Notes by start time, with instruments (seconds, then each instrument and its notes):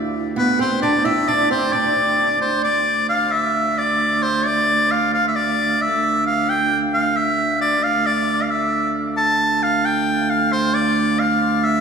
Already playing: viola da gamba D2
0.36 oud B3, shawm B4
0.59 oud C4, shawm C5
0.82 oud D4, shawm D5
1.05 oud E4, shawm E5
1.28 oud D4, shawm D5
1.51 oud C4, shawm C5
1.73 oud D4, shawm D5
2.41 viola da gamba D2, shawm C5
2.64 shawm D5
3.09 shawm F5
3.32 shawm E5
3.78 shawm D5
4.23 shawm C5
4.46 shawm D5
4.91 shawm F5
5.14 shawm F5
5.28 shawm E5
5.36 shawm D5
5.82 shawm E5
6.26 shawm F5
6.49 shawm G5
6.94 shawm F5
7.17 shawm E5
7.61 shawm D5
7.83 viola da gamba D2, shawm F5
8.07 shawm D5
8.43 shawm F5
8.51 shawm E5
9.17 shawm A5
9.63 shawm F5
9.85 shawm G5
10.30 shawm F5
10.52 shawm C5
10.74 shawm D5
11.20 shawm F5
11.64 shawm E5